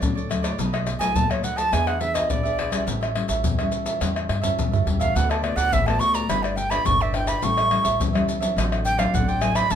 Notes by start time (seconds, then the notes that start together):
Already playing: A4 C#5 D5
0.01 D2 A2 F#3 A3 C#4, pandeiro, maracas, surdo
0.15 A4 C#5 D5, pandeiro, maracas
0.29 F#3 A3 C#4 F#4 A4 C#5 D5, pandeiro, tamborim, maracas
0.43 A4 C#5 D5, pandeiro, tamborim, maracas, surdo
0.58 B1 B2 F#3 A3 D#4 A4 B4 D#5, pandeiro, maracas, surdo
0.73 A4 B4 D#5, pandeiro, tamborim, maracas
0.87 muted cavaquinho stroke, pandeiro, tamborim, maracas
0.99 B1 F#3 A3 D#4 A4 B4 D#5 G#5, pandeiro, maracas, surdo
1.15 D#2 F#2 D#4 A4 B4 D#5 A5, pandeiro, maracas, surdo
1.30 A4 B4 C#5 D#5, pandeiro, tamborim, maracas
1.43 F#3 A3 D#4 F#5, pandeiro, maracas
1.56 A4 B4 D#5 A5, pandeiro, maracas, surdo
1.72 E2 E3 B3 D4 G#4 B4 E5 G#5, pandeiro, tamborim, maracas, surdo
1.87 F#5, pandeiro, tamborim, maracas
2.01 B3 D4 G#4 E5, muted cavaquinho stroke, pandeiro
2.14 G#4 B4 D#5 E5, pandeiro, tamborim, maracas, surdo
2.30 A#1 D5, pandeiro, maracas, surdo
2.43 B3 D4 G#4 B4 E5, pandeiro, maracas
2.58 D4 G#4 B4 E5, pandeiro, tamborim
2.70 G3 C#4 E4 G#4 B4 E5, pandeiro, tamborim, maracas, surdo
2.86 A1 A2 G4 A4 C#5 E5, pandeiro, maracas, surdo
3.01 A4 C#5 E5, pandeiro, tamborim, maracas
3.15 G3 C#4 E4, muted cavaquinho stroke, pandeiro, tamborim
3.28 A1 A4 C#5 E5, pandeiro, maracas, surdo
3.44 E2 E3 G4 A4 C#5 E5, pandeiro, maracas, surdo
3.58 G3 C#4 E4 A4 C#5 E5, pandeiro, tamborim, maracas
3.72 pandeiro, maracas
3.86 A4 C#5 E5, pandeiro, maracas, surdo
4.01 E2 A2 G3 C#4 E4 G4 A4 C#5 E5, pandeiro, tamborim, maracas, surdo
4.16 pandeiro, tamborim, maracas
4.29 G2, muted cavaquinho stroke, pandeiro, tamborim
4.42 G3 C#4 E4 A4 C#5 E5, surdo, pandeiro, maracas
4.58 F#2 E3, pandeiro, maracas, surdo
4.72 A4 C#5 E5, surdo, pandeiro, maracas
4.86 E2 G3 C#4 E4 G4 A4 C#5 E5, pandeiro, surdo
5.00 A4 C#5 E5 F5, pandeiro, maracas, surdo
5.15 D2 D3 A3 B3 F#4 A4 B4 D5 F#5, pandeiro, maracas, surdo
5.30 A4 B4 D5, pandeiro, tamborim, maracas
5.43 A3 B3 F#4 D5, muted cavaquinho stroke, pandeiro, tamborim
5.56 D2 A4 B4 D5 F#5, pandeiro, maracas, surdo
5.71 A1 A2 F#4 A4 B4 D5 E5, pandeiro, maracas, surdo
5.87 A3 B3 F#4 A4 B4 D5 A5, pandeiro, tamborim, maracas
6.00 C#6, pandeiro, maracas
6.13 A4 B4 D5 A#5, pandeiro, maracas, surdo
6.28 G1 G3 D4 E4 G4 B4 D5 B5, pandeiro, tamborim, maracas, surdo
6.43 D5, pandeiro, tamborim, maracas
6.56 G5, muted cavaquinho stroke, pandeiro, maracas
6.70 D4 E4 G4 B4 D5 B5, pandeiro, tamborim, maracas, surdo
6.86 G1 D3 C#6, pandeiro, maracas, surdo
7.00 G4 B4 D5 E5, pandeiro, maracas
7.13 D4 E4 G4 B4 D5 G5, pandeiro, tamborim
7.26 G4 B4 D5 B5, pandeiro, tamborim, maracas, surdo
7.42 A1 A2 G3 C#4 E4 G4 A4 C#5 E5 C#6, pandeiro, maracas, surdo
7.57 A4 C#5 E5, pandeiro, tamborim, maracas
7.70 G3 C#4 E4, muted cavaquinho stroke, pandeiro, tamborim
7.83 A1 A4 C#5 E5, pandeiro, maracas, surdo
7.99 E2 E3 G3 C#4 E4 G4 A4 C#5 E5, pandeiro, maracas, surdo
8.13 G3 C#4 E4 A4 C#5 E5, pandeiro, tamborim, maracas
8.29 pandeiro, maracas
8.40 F#3 C4 D4 A4 C#5 E5, pandeiro, maracas, surdo
8.56 A1 A2 F#4 A4 C5 D5, pandeiro, tamborim, maracas, surdo
8.72 pandeiro, tamborim, maracas
8.84 G5, muted cavaquinho stroke, pandeiro, maracas
8.97 F#3 C4 D4 A4 C5 D5 F5, pandeiro, tamborim, maracas, surdo
9.14 A1 A2 F#5, pandeiro, maracas, surdo
9.28 A4 C5 D5 G5, pandeiro, maracas
9.41 F#3 C4 D4 F#4 A4 C5 D5 G#5, pandeiro, tamborim, maracas
9.55 A4 C5 D5 B5, pandeiro, tamborim, maracas, surdo
9.70 B1 B2 F#3 A3 D#4 A4 B4 A5, pandeiro, maracas, surdo